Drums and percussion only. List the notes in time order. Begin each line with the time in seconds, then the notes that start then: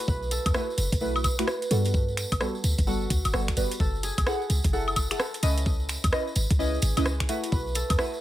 0.08 kick, tambourine
0.22 tambourine
0.31 closed hi-hat, tambourine
0.46 kick, closed hi-hat, tambourine, high woodblock
0.54 cross-stick, tambourine
0.70 tambourine
0.78 closed hi-hat, tambourine
0.92 kick, closed hi-hat, tambourine
1.00 tambourine
1.16 tambourine, high woodblock
1.24 kick, closed hi-hat, tambourine, high woodblock
1.39 finger snap, closed hi-hat
1.47 cross-stick, tambourine
1.62 closed hi-hat, tambourine
1.71 closed hi-hat, tambourine
1.85 closed hi-hat, tambourine
1.94 kick, tambourine
2.08 tambourine
2.17 finger snap, closed hi-hat, tambourine
2.32 kick, closed hi-hat, high woodblock
2.41 cross-stick, tambourine
2.55 tambourine
2.64 closed hi-hat, tambourine
2.78 kick, closed hi-hat, tambourine
2.87 tambourine
3.02 tambourine
3.10 kick, closed hi-hat, tambourine
3.25 closed hi-hat, tambourine, high woodblock
3.34 cross-stick, tambourine
3.48 finger snap, kick, closed hi-hat, tambourine
3.57 closed hi-hat, tambourine
3.71 closed hi-hat, tambourine
3.80 kick, tambourine
3.95 tambourine
4.03 closed hi-hat, tambourine
4.18 kick, closed hi-hat, tambourine, high woodblock
4.27 cross-stick, tambourine
4.42 tambourine
4.50 closed hi-hat, tambourine
4.64 kick, closed hi-hat, tambourine
4.73 tambourine
4.88 tambourine, high woodblock
4.96 kick, closed hi-hat, tambourine, high woodblock
5.11 finger snap, closed hi-hat, tambourine
5.20 cross-stick, tambourine
5.34 closed hi-hat, tambourine
5.43 closed hi-hat, tambourine
5.58 closed hi-hat, tambourine
5.66 kick, tambourine
5.80 tambourine
5.89 finger snap, closed hi-hat, tambourine
6.04 kick, closed hi-hat, tambourine, high woodblock
6.12 cross-stick, tambourine
6.27 tambourine
6.35 closed hi-hat, tambourine
6.51 kick, closed hi-hat, tambourine
6.60 tambourine
6.75 tambourine
6.82 closed hi-hat, tambourine
6.97 closed hi-hat, tambourine, high woodblock
7.06 cross-stick, tambourine
7.20 finger snap, kick, closed hi-hat, tambourine
7.29 closed hi-hat, tambourine
7.44 closed hi-hat, tambourine
7.52 kick, tambourine
7.67 tambourine
7.75 closed hi-hat, tambourine
7.90 kick, closed hi-hat, tambourine, high woodblock
7.99 cross-stick, tambourine
8.14 tambourine